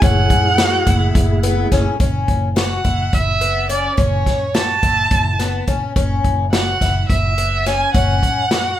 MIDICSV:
0, 0, Header, 1, 6, 480
1, 0, Start_track
1, 0, Key_signature, 3, "minor"
1, 0, Tempo, 566038
1, 16, Time_signature, 7, 3, 24, 8
1, 7460, End_track
2, 0, Start_track
2, 0, Title_t, "Violin"
2, 0, Program_c, 0, 40
2, 25, Note_on_c, 0, 78, 89
2, 1221, Note_off_c, 0, 78, 0
2, 2187, Note_on_c, 0, 78, 73
2, 2663, Note_on_c, 0, 76, 82
2, 2676, Note_off_c, 0, 78, 0
2, 3135, Note_off_c, 0, 76, 0
2, 3140, Note_on_c, 0, 74, 76
2, 3362, Note_off_c, 0, 74, 0
2, 3379, Note_on_c, 0, 73, 84
2, 3855, Note_on_c, 0, 81, 87
2, 3868, Note_off_c, 0, 73, 0
2, 4816, Note_off_c, 0, 81, 0
2, 5531, Note_on_c, 0, 78, 80
2, 5980, Note_off_c, 0, 78, 0
2, 6014, Note_on_c, 0, 76, 82
2, 6498, Note_on_c, 0, 80, 94
2, 6511, Note_off_c, 0, 76, 0
2, 6729, Note_off_c, 0, 80, 0
2, 6734, Note_on_c, 0, 78, 89
2, 7460, Note_off_c, 0, 78, 0
2, 7460, End_track
3, 0, Start_track
3, 0, Title_t, "Tonewheel organ"
3, 0, Program_c, 1, 16
3, 0, Note_on_c, 1, 57, 64
3, 0, Note_on_c, 1, 64, 70
3, 0, Note_on_c, 1, 68, 79
3, 1654, Note_off_c, 1, 57, 0
3, 1658, Note_off_c, 1, 64, 0
3, 1663, Note_off_c, 1, 68, 0
3, 7460, End_track
4, 0, Start_track
4, 0, Title_t, "Twelve-string acoustic guitar"
4, 0, Program_c, 2, 25
4, 15, Note_on_c, 2, 61, 69
4, 423, Note_off_c, 2, 61, 0
4, 494, Note_on_c, 2, 66, 73
4, 699, Note_off_c, 2, 66, 0
4, 736, Note_on_c, 2, 64, 67
4, 1143, Note_off_c, 2, 64, 0
4, 1215, Note_on_c, 2, 59, 61
4, 1419, Note_off_c, 2, 59, 0
4, 1458, Note_on_c, 2, 61, 67
4, 1661, Note_off_c, 2, 61, 0
4, 1696, Note_on_c, 2, 61, 65
4, 2103, Note_off_c, 2, 61, 0
4, 2172, Note_on_c, 2, 66, 69
4, 2378, Note_off_c, 2, 66, 0
4, 2413, Note_on_c, 2, 64, 59
4, 2822, Note_off_c, 2, 64, 0
4, 2893, Note_on_c, 2, 59, 65
4, 3098, Note_off_c, 2, 59, 0
4, 3132, Note_on_c, 2, 61, 70
4, 3338, Note_off_c, 2, 61, 0
4, 3370, Note_on_c, 2, 61, 63
4, 3780, Note_off_c, 2, 61, 0
4, 3854, Note_on_c, 2, 66, 69
4, 4059, Note_off_c, 2, 66, 0
4, 4095, Note_on_c, 2, 64, 61
4, 4503, Note_off_c, 2, 64, 0
4, 4574, Note_on_c, 2, 59, 62
4, 4779, Note_off_c, 2, 59, 0
4, 4816, Note_on_c, 2, 61, 69
4, 5020, Note_off_c, 2, 61, 0
4, 5057, Note_on_c, 2, 61, 71
4, 5464, Note_off_c, 2, 61, 0
4, 5538, Note_on_c, 2, 66, 70
4, 5741, Note_off_c, 2, 66, 0
4, 5782, Note_on_c, 2, 64, 67
4, 6186, Note_off_c, 2, 64, 0
4, 6257, Note_on_c, 2, 59, 61
4, 6460, Note_off_c, 2, 59, 0
4, 6499, Note_on_c, 2, 61, 74
4, 6701, Note_off_c, 2, 61, 0
4, 6738, Note_on_c, 2, 61, 75
4, 7144, Note_off_c, 2, 61, 0
4, 7219, Note_on_c, 2, 66, 65
4, 7421, Note_off_c, 2, 66, 0
4, 7460, End_track
5, 0, Start_track
5, 0, Title_t, "Upright bass"
5, 0, Program_c, 3, 32
5, 14, Note_on_c, 3, 30, 97
5, 220, Note_off_c, 3, 30, 0
5, 254, Note_on_c, 3, 42, 78
5, 667, Note_off_c, 3, 42, 0
5, 734, Note_on_c, 3, 30, 88
5, 941, Note_off_c, 3, 30, 0
5, 977, Note_on_c, 3, 30, 87
5, 1388, Note_off_c, 3, 30, 0
5, 1457, Note_on_c, 3, 30, 82
5, 1560, Note_off_c, 3, 30, 0
5, 1695, Note_on_c, 3, 30, 77
5, 1901, Note_off_c, 3, 30, 0
5, 1933, Note_on_c, 3, 30, 74
5, 2346, Note_off_c, 3, 30, 0
5, 2414, Note_on_c, 3, 30, 82
5, 2621, Note_off_c, 3, 30, 0
5, 2656, Note_on_c, 3, 30, 74
5, 3274, Note_off_c, 3, 30, 0
5, 3372, Note_on_c, 3, 30, 80
5, 3580, Note_off_c, 3, 30, 0
5, 3613, Note_on_c, 3, 42, 69
5, 4026, Note_off_c, 3, 42, 0
5, 4095, Note_on_c, 3, 30, 74
5, 4301, Note_off_c, 3, 30, 0
5, 4332, Note_on_c, 3, 30, 80
5, 4746, Note_off_c, 3, 30, 0
5, 4814, Note_on_c, 3, 30, 80
5, 4918, Note_off_c, 3, 30, 0
5, 5055, Note_on_c, 3, 30, 82
5, 5261, Note_off_c, 3, 30, 0
5, 5293, Note_on_c, 3, 30, 78
5, 5706, Note_off_c, 3, 30, 0
5, 5776, Note_on_c, 3, 30, 86
5, 5982, Note_off_c, 3, 30, 0
5, 6016, Note_on_c, 3, 30, 74
5, 6633, Note_off_c, 3, 30, 0
5, 6736, Note_on_c, 3, 30, 85
5, 6941, Note_off_c, 3, 30, 0
5, 6975, Note_on_c, 3, 42, 69
5, 7386, Note_off_c, 3, 42, 0
5, 7460, End_track
6, 0, Start_track
6, 0, Title_t, "Drums"
6, 16, Note_on_c, 9, 36, 104
6, 16, Note_on_c, 9, 42, 77
6, 101, Note_off_c, 9, 36, 0
6, 101, Note_off_c, 9, 42, 0
6, 255, Note_on_c, 9, 36, 71
6, 256, Note_on_c, 9, 42, 58
6, 340, Note_off_c, 9, 36, 0
6, 341, Note_off_c, 9, 42, 0
6, 493, Note_on_c, 9, 38, 90
6, 493, Note_on_c, 9, 42, 77
6, 578, Note_off_c, 9, 38, 0
6, 578, Note_off_c, 9, 42, 0
6, 735, Note_on_c, 9, 42, 60
6, 736, Note_on_c, 9, 36, 71
6, 820, Note_off_c, 9, 36, 0
6, 820, Note_off_c, 9, 42, 0
6, 976, Note_on_c, 9, 36, 95
6, 977, Note_on_c, 9, 42, 71
6, 1061, Note_off_c, 9, 36, 0
6, 1062, Note_off_c, 9, 42, 0
6, 1215, Note_on_c, 9, 42, 54
6, 1300, Note_off_c, 9, 42, 0
6, 1456, Note_on_c, 9, 38, 32
6, 1456, Note_on_c, 9, 42, 59
6, 1457, Note_on_c, 9, 36, 65
6, 1541, Note_off_c, 9, 38, 0
6, 1541, Note_off_c, 9, 42, 0
6, 1542, Note_off_c, 9, 36, 0
6, 1696, Note_on_c, 9, 36, 98
6, 1697, Note_on_c, 9, 42, 67
6, 1781, Note_off_c, 9, 36, 0
6, 1782, Note_off_c, 9, 42, 0
6, 1935, Note_on_c, 9, 36, 68
6, 1935, Note_on_c, 9, 42, 45
6, 2020, Note_off_c, 9, 36, 0
6, 2020, Note_off_c, 9, 42, 0
6, 2177, Note_on_c, 9, 38, 89
6, 2177, Note_on_c, 9, 42, 61
6, 2262, Note_off_c, 9, 38, 0
6, 2262, Note_off_c, 9, 42, 0
6, 2415, Note_on_c, 9, 42, 46
6, 2416, Note_on_c, 9, 36, 68
6, 2500, Note_off_c, 9, 36, 0
6, 2500, Note_off_c, 9, 42, 0
6, 2654, Note_on_c, 9, 42, 67
6, 2655, Note_on_c, 9, 36, 82
6, 2739, Note_off_c, 9, 42, 0
6, 2740, Note_off_c, 9, 36, 0
6, 2894, Note_on_c, 9, 42, 50
6, 2979, Note_off_c, 9, 42, 0
6, 3137, Note_on_c, 9, 42, 50
6, 3222, Note_off_c, 9, 42, 0
6, 3374, Note_on_c, 9, 42, 68
6, 3375, Note_on_c, 9, 36, 99
6, 3459, Note_off_c, 9, 42, 0
6, 3460, Note_off_c, 9, 36, 0
6, 3616, Note_on_c, 9, 36, 65
6, 3617, Note_on_c, 9, 38, 32
6, 3617, Note_on_c, 9, 42, 55
6, 3700, Note_off_c, 9, 36, 0
6, 3702, Note_off_c, 9, 38, 0
6, 3702, Note_off_c, 9, 42, 0
6, 3857, Note_on_c, 9, 38, 93
6, 3857, Note_on_c, 9, 42, 72
6, 3942, Note_off_c, 9, 38, 0
6, 3942, Note_off_c, 9, 42, 0
6, 4095, Note_on_c, 9, 36, 70
6, 4095, Note_on_c, 9, 42, 55
6, 4180, Note_off_c, 9, 36, 0
6, 4180, Note_off_c, 9, 42, 0
6, 4332, Note_on_c, 9, 42, 71
6, 4334, Note_on_c, 9, 36, 86
6, 4417, Note_off_c, 9, 42, 0
6, 4419, Note_off_c, 9, 36, 0
6, 4575, Note_on_c, 9, 38, 28
6, 4575, Note_on_c, 9, 42, 49
6, 4660, Note_off_c, 9, 38, 0
6, 4660, Note_off_c, 9, 42, 0
6, 4812, Note_on_c, 9, 42, 53
6, 4814, Note_on_c, 9, 36, 59
6, 4897, Note_off_c, 9, 42, 0
6, 4899, Note_off_c, 9, 36, 0
6, 5054, Note_on_c, 9, 42, 74
6, 5055, Note_on_c, 9, 36, 88
6, 5139, Note_off_c, 9, 36, 0
6, 5139, Note_off_c, 9, 42, 0
6, 5295, Note_on_c, 9, 36, 66
6, 5295, Note_on_c, 9, 42, 50
6, 5380, Note_off_c, 9, 36, 0
6, 5380, Note_off_c, 9, 42, 0
6, 5536, Note_on_c, 9, 38, 98
6, 5536, Note_on_c, 9, 42, 65
6, 5621, Note_off_c, 9, 38, 0
6, 5621, Note_off_c, 9, 42, 0
6, 5777, Note_on_c, 9, 36, 64
6, 5778, Note_on_c, 9, 38, 31
6, 5778, Note_on_c, 9, 42, 48
6, 5861, Note_off_c, 9, 36, 0
6, 5863, Note_off_c, 9, 38, 0
6, 5863, Note_off_c, 9, 42, 0
6, 6017, Note_on_c, 9, 36, 80
6, 6019, Note_on_c, 9, 42, 61
6, 6102, Note_off_c, 9, 36, 0
6, 6104, Note_off_c, 9, 42, 0
6, 6258, Note_on_c, 9, 42, 45
6, 6343, Note_off_c, 9, 42, 0
6, 6500, Note_on_c, 9, 38, 30
6, 6500, Note_on_c, 9, 42, 46
6, 6585, Note_off_c, 9, 38, 0
6, 6585, Note_off_c, 9, 42, 0
6, 6737, Note_on_c, 9, 36, 105
6, 6740, Note_on_c, 9, 42, 70
6, 6822, Note_off_c, 9, 36, 0
6, 6825, Note_off_c, 9, 42, 0
6, 6976, Note_on_c, 9, 36, 62
6, 6979, Note_on_c, 9, 42, 53
6, 7061, Note_off_c, 9, 36, 0
6, 7064, Note_off_c, 9, 42, 0
6, 7217, Note_on_c, 9, 38, 84
6, 7217, Note_on_c, 9, 42, 63
6, 7302, Note_off_c, 9, 38, 0
6, 7302, Note_off_c, 9, 42, 0
6, 7460, End_track
0, 0, End_of_file